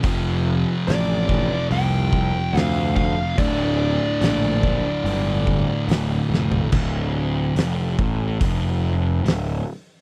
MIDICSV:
0, 0, Header, 1, 5, 480
1, 0, Start_track
1, 0, Key_signature, -1, "minor"
1, 0, Tempo, 836820
1, 20, Time_signature, 4, 2, 24, 8
1, 5743, End_track
2, 0, Start_track
2, 0, Title_t, "Lead electric guitar"
2, 0, Program_c, 0, 29
2, 503, Note_on_c, 0, 74, 92
2, 956, Note_off_c, 0, 74, 0
2, 989, Note_on_c, 0, 79, 112
2, 1488, Note_off_c, 0, 79, 0
2, 1488, Note_on_c, 0, 77, 112
2, 1697, Note_off_c, 0, 77, 0
2, 1697, Note_on_c, 0, 77, 101
2, 1939, Note_off_c, 0, 77, 0
2, 1941, Note_on_c, 0, 74, 82
2, 3354, Note_off_c, 0, 74, 0
2, 5743, End_track
3, 0, Start_track
3, 0, Title_t, "Distorted electric guitar"
3, 0, Program_c, 1, 30
3, 16, Note_on_c, 1, 41, 91
3, 28, Note_on_c, 1, 48, 99
3, 36, Note_on_c, 1, 53, 109
3, 721, Note_off_c, 1, 41, 0
3, 727, Note_off_c, 1, 48, 0
3, 733, Note_off_c, 1, 53, 0
3, 736, Note_on_c, 1, 53, 94
3, 745, Note_on_c, 1, 48, 91
3, 752, Note_on_c, 1, 41, 70
3, 1924, Note_off_c, 1, 48, 0
3, 1927, Note_off_c, 1, 41, 0
3, 1929, Note_on_c, 1, 38, 106
3, 1940, Note_on_c, 1, 45, 100
3, 1944, Note_off_c, 1, 53, 0
3, 1946, Note_on_c, 1, 50, 116
3, 2636, Note_off_c, 1, 38, 0
3, 2642, Note_off_c, 1, 45, 0
3, 2645, Note_off_c, 1, 50, 0
3, 2651, Note_on_c, 1, 50, 92
3, 2660, Note_on_c, 1, 45, 82
3, 2669, Note_on_c, 1, 38, 74
3, 3838, Note_off_c, 1, 50, 0
3, 3842, Note_off_c, 1, 45, 0
3, 3847, Note_off_c, 1, 38, 0
3, 3857, Note_on_c, 1, 38, 112
3, 4329, Note_off_c, 1, 38, 0
3, 4339, Note_on_c, 1, 41, 106
3, 4570, Note_off_c, 1, 41, 0
3, 4580, Note_on_c, 1, 45, 104
3, 4811, Note_off_c, 1, 45, 0
3, 4818, Note_on_c, 1, 41, 109
3, 5291, Note_off_c, 1, 41, 0
3, 5302, Note_on_c, 1, 38, 82
3, 5492, Note_off_c, 1, 38, 0
3, 5743, End_track
4, 0, Start_track
4, 0, Title_t, "Picked electric bass"
4, 0, Program_c, 2, 34
4, 20, Note_on_c, 2, 29, 92
4, 362, Note_off_c, 2, 29, 0
4, 506, Note_on_c, 2, 33, 100
4, 845, Note_off_c, 2, 33, 0
4, 979, Note_on_c, 2, 36, 101
4, 1321, Note_off_c, 2, 36, 0
4, 1453, Note_on_c, 2, 38, 91
4, 1796, Note_off_c, 2, 38, 0
4, 1941, Note_on_c, 2, 26, 98
4, 2281, Note_off_c, 2, 26, 0
4, 2417, Note_on_c, 2, 34, 102
4, 2759, Note_off_c, 2, 34, 0
4, 2892, Note_on_c, 2, 31, 107
4, 3236, Note_off_c, 2, 31, 0
4, 3373, Note_on_c, 2, 26, 91
4, 3545, Note_off_c, 2, 26, 0
4, 3612, Note_on_c, 2, 29, 88
4, 3784, Note_off_c, 2, 29, 0
4, 3858, Note_on_c, 2, 26, 88
4, 4313, Note_off_c, 2, 26, 0
4, 4333, Note_on_c, 2, 29, 92
4, 4557, Note_off_c, 2, 29, 0
4, 4582, Note_on_c, 2, 33, 92
4, 4802, Note_off_c, 2, 33, 0
4, 4822, Note_on_c, 2, 29, 102
4, 5277, Note_off_c, 2, 29, 0
4, 5299, Note_on_c, 2, 26, 87
4, 5522, Note_off_c, 2, 26, 0
4, 5743, End_track
5, 0, Start_track
5, 0, Title_t, "Drums"
5, 17, Note_on_c, 9, 46, 65
5, 22, Note_on_c, 9, 36, 110
5, 74, Note_off_c, 9, 46, 0
5, 79, Note_off_c, 9, 36, 0
5, 502, Note_on_c, 9, 46, 66
5, 517, Note_on_c, 9, 38, 113
5, 559, Note_off_c, 9, 46, 0
5, 574, Note_off_c, 9, 38, 0
5, 741, Note_on_c, 9, 36, 87
5, 798, Note_off_c, 9, 36, 0
5, 979, Note_on_c, 9, 46, 71
5, 1036, Note_off_c, 9, 46, 0
5, 1220, Note_on_c, 9, 36, 82
5, 1277, Note_off_c, 9, 36, 0
5, 1461, Note_on_c, 9, 46, 74
5, 1476, Note_on_c, 9, 38, 117
5, 1518, Note_off_c, 9, 46, 0
5, 1534, Note_off_c, 9, 38, 0
5, 1700, Note_on_c, 9, 36, 82
5, 1757, Note_off_c, 9, 36, 0
5, 1940, Note_on_c, 9, 36, 115
5, 1940, Note_on_c, 9, 46, 60
5, 1997, Note_off_c, 9, 36, 0
5, 1997, Note_off_c, 9, 46, 0
5, 2416, Note_on_c, 9, 46, 61
5, 2431, Note_on_c, 9, 38, 105
5, 2473, Note_off_c, 9, 46, 0
5, 2489, Note_off_c, 9, 38, 0
5, 2658, Note_on_c, 9, 36, 90
5, 2715, Note_off_c, 9, 36, 0
5, 2902, Note_on_c, 9, 46, 62
5, 2959, Note_off_c, 9, 46, 0
5, 3138, Note_on_c, 9, 36, 81
5, 3195, Note_off_c, 9, 36, 0
5, 3377, Note_on_c, 9, 46, 66
5, 3392, Note_on_c, 9, 38, 120
5, 3434, Note_off_c, 9, 46, 0
5, 3450, Note_off_c, 9, 38, 0
5, 3635, Note_on_c, 9, 38, 68
5, 3692, Note_off_c, 9, 38, 0
5, 3738, Note_on_c, 9, 43, 94
5, 3795, Note_off_c, 9, 43, 0
5, 3855, Note_on_c, 9, 49, 110
5, 3859, Note_on_c, 9, 36, 104
5, 3912, Note_off_c, 9, 49, 0
5, 3916, Note_off_c, 9, 36, 0
5, 4337, Note_on_c, 9, 46, 67
5, 4352, Note_on_c, 9, 38, 117
5, 4394, Note_off_c, 9, 46, 0
5, 4410, Note_off_c, 9, 38, 0
5, 4582, Note_on_c, 9, 36, 102
5, 4639, Note_off_c, 9, 36, 0
5, 4823, Note_on_c, 9, 36, 110
5, 4824, Note_on_c, 9, 46, 67
5, 4881, Note_off_c, 9, 36, 0
5, 4881, Note_off_c, 9, 46, 0
5, 5310, Note_on_c, 9, 46, 71
5, 5325, Note_on_c, 9, 38, 121
5, 5367, Note_off_c, 9, 46, 0
5, 5382, Note_off_c, 9, 38, 0
5, 5743, End_track
0, 0, End_of_file